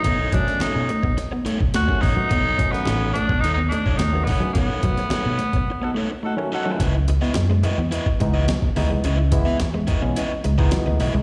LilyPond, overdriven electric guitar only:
\new Staff \with { instrumentName = "Overdriven electric guitar" } { \time 4/4 \key cis \minor \tempo 4 = 107 <dis' a' cis''>8 r8 <dis' a' cis''>8 r4 <dis' a' cis''>16 r8. <dis' a' cis''>16 r16 | <dis' a' cis''>8 r8 <dis' a' cis''>8 r8 <dis' a' cis''>16 r8 <dis' a' cis''>16 r8 <dis' a' cis''>16 r16 | <dis' a' cis''>8 r8 <dis' a' cis''>8 r4 <dis' a' cis''>16 r8. <dis' a' cis''>16 r16 | <e' b' dis''>16 r8 <e' b' dis''>16 r8 <e' b' dis''>16 r16 <e' b' dis''>16 r8 <e' b' dis''>16 r8 <e' b' dis''>16 r16 |
<e' b' dis''>16 r8 <e' b' e''>16 r8 <e' b' dis''>16 r16 <e' b' dis''>16 r8 <e' b' dis''>16 r8 <e' b' dis''>16 r16 | }